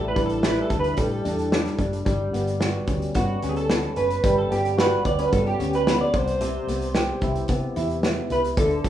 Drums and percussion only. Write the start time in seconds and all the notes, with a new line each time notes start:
0.16 kick, closed hi-hat
0.30 closed hi-hat
0.43 snare
0.56 closed hi-hat
0.70 kick, closed hi-hat
0.84 closed hi-hat
0.97 kick, closed hi-hat
1.11 closed hi-hat
1.25 closed hi-hat
1.39 closed hi-hat
1.52 snare
1.66 snare, closed hi-hat
1.79 kick, closed hi-hat
1.93 closed hi-hat
2.06 kick, closed hi-hat
2.34 closed hi-hat
2.47 closed hi-hat
2.61 snare
2.87 kick, closed hi-hat
3.02 closed hi-hat
3.15 kick, closed hi-hat
3.42 closed hi-hat
3.56 closed hi-hat
3.70 snare
3.84 closed hi-hat
3.96 closed hi-hat
4.10 closed hi-hat
4.24 kick, closed hi-hat
4.52 closed hi-hat
4.65 closed hi-hat
4.79 snare
5.05 kick, closed hi-hat
5.20 closed hi-hat
5.33 kick, closed hi-hat
5.46 closed hi-hat
5.60 closed hi-hat
5.73 closed hi-hat
5.87 snare
6.14 kick, closed hi-hat
6.28 closed hi-hat
6.41 closed hi-hat
6.68 closed hi-hat
6.82 closed hi-hat
6.95 snare
7.21 kick, closed hi-hat
7.36 closed hi-hat
7.48 kick, closed hi-hat
7.76 closed hi-hat
7.89 closed hi-hat
8.03 snare
8.30 closed hi-hat
8.44 closed hi-hat
8.57 kick, closed hi-hat
8.71 closed hi-hat
8.84 kick, closed hi-hat